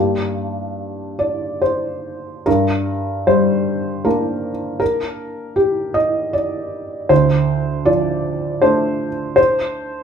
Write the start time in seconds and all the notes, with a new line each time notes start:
Already playing: G2 G3 A#3 D4 G4
1.19 D5
1.62 C5
2.46 G2 A#4
3.27 G3 C5
4.05 A#3 D4 A#4
4.80 A#4
5.56 G4
5.94 D#5
6.33 D5
7.09 D2 C5
7.85 F3 D5
8.62 A3 D4 C5
9.36 C5